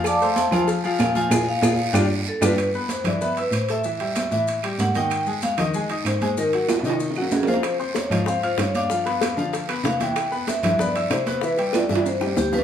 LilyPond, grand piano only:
\new Staff \with { instrumentName = "Grand piano" } { \time 4/4 \key g \mixolydian \tempo 4 = 190 <eis eis' eis''>8 <a a' c''>4 <f f' f''>4 <f f' f''>4 <f f' f''>8 | <f' gis' bes'>8 r8 <f' gis' bes'>8 r8 <d' f' g'>8 r4 <d' f' g'>8 | r8 <b b' b''>4 <e e' e''>8 <b b' b''>8 <e' e'' e'''>4 <a a' a''>8 | <e e' e''>8 <g g' g''>4 <e e' e''>4 <g g' g''>4 <ees ees' ees''>8~ |
<ees ees' ees''>8 <aes aes' aes''>4 <ees ees' ees''>8 <aes aes' aes''>8 <ees' ees'' ees'''>4 <aes aes' aes''>8 | <ees ees' ees''>8 <ges ges' ges''>4 <ees ees' ees''>4 <ges ges' ges''>4 <f f' f''>8~ | <f f' f''>8 <c' c'' c'''>4 <f f' f''>8 <c' c'' c'''>8 <f' f'' f'''>4 <d' d'' d'''>8 | <f f' f''>8 <b b' b''>4 <f f' f''>4 <b b' b''>4 <e e' e''>8~ |
<e e' e''>8 <b b' b''>4 <e e' e''>8 <b b' b''>8 <e' e'' e'''>4 <b b' b''>8 | <e e' e''>8 <g g' g''>4 <e e' e''>4 <g g' g''>4 <f f' f''>8 | }